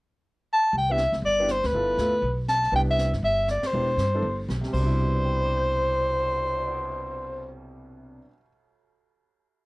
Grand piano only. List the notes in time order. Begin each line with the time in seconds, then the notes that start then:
0.89 B3 D4 E4 G4
1.39 B3 D4 E4 G4
1.74 B3 E4 F4 A4
1.98 B3 E4 F4 A4
2.72 B3 D4 E4 G4
3.74 B3 D4 E4 G4
4.14 B3 D4 E4 A4
4.61 C3
4.68 G3
4.73 B2
4.80 D4
4.86 E4
5.00 G4
5.07 B4
5.15 D5
5.25 G5
5.35 B5
5.45 D6
5.57 G6